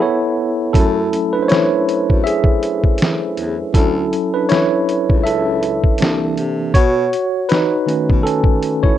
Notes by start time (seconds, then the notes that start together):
Already playing: B3
0.00 E4 A4 C#5
0.73 F#2 F#3 A3 C#4 E4 A4, kick, closed hi-hat
1.13 closed hi-hat
1.33 D4 B4
1.42 C5
1.48 E4 C#5, snare, closed hi-hat
1.89 closed hi-hat
2.10 F#2, kick
2.24 G#4 E5, closed hi-hat
2.44 kick
2.63 closed hi-hat
2.84 kick
2.98 closed hi-hat
3.02 snare
3.37 E2, closed hi-hat
3.74 D2 F#3 C#4 E4 A4, kick, closed hi-hat
4.13 closed hi-hat
4.34 D4 B4
4.49 E4 C#5, snare, closed hi-hat
4.89 closed hi-hat
5.10 C#2, kick
5.24 A4 E5, closed hi-hat
5.63 closed hi-hat
5.84 kick
5.98 C2 E3 A#3 D4, closed hi-hat
6.02 snare
6.37 C3, closed hi-hat
6.74 B2 F#4 C#5, kick, closed hi-hat
7.13 closed hi-hat
7.49 D#4 B4, snare, closed hi-hat
7.86 D#3 A3 C#4, closed hi-hat
8.10 B2, kick
8.23 C#4 A4, closed hi-hat
8.44 kick
8.63 closed hi-hat
8.83 E4 C#5, kick